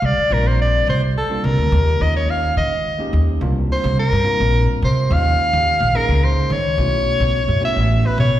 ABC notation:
X:1
M:6/8
L:1/16
Q:3/8=71
K:Eblyd
V:1 name="Soprano saxophone"
d2 B c d2 c2 A2 B2- | B2 e _d f2 e4 z2 | z2 c2 B6 c2 | f6 B2 c2 _d2- |
_d6 =e3 =B ^c2 |]
V:2 name="Tine electric piano"
z2 [G,B,CDF]4- [G,B,CDF] z2 [G,B,CDF]3 | z2 [_A,B,_DEF]4- [A,B,DEF] z2 [A,B,DEG]3 | [G,B,CDF]4 z2 [G,B,CDF]4 z2 | [_A,B,_DEF]4 z2 [A,B,DE_A]4 z2 |
[A,=B,^C=E^F]4 z2 [A,B,CEF]4 z2 |]
V:3 name="Upright bass" clef=bass
C,, z B,,,4 C,,2 z2 C,, D,, | E,,2 E,,4 E,2 z2 E,, z | C,,2 z C,,2 G,, z B,,,2 z C,2 | E,,2 z E,,2 B,,, z _D,,2 z E,2 |
=B,,,2 z B,,,2 ^F,, z A,,,2 z =B,,2 |]